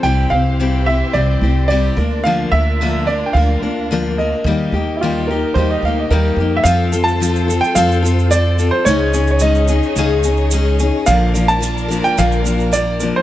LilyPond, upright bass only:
\new Staff \with { instrumentName = "Upright bass" } { \clef bass \time 4/4 \key f \major \tempo 4 = 109 c,8 c,4. c,8 c,4 d,8~ | d,8 d,4. d,8 d,4. | ees,8 ees,4. ees,8 d,8 ees,8 f,8 | f,2 f,2 |
des,2 des,2 | bes,,2 bes,,2 | }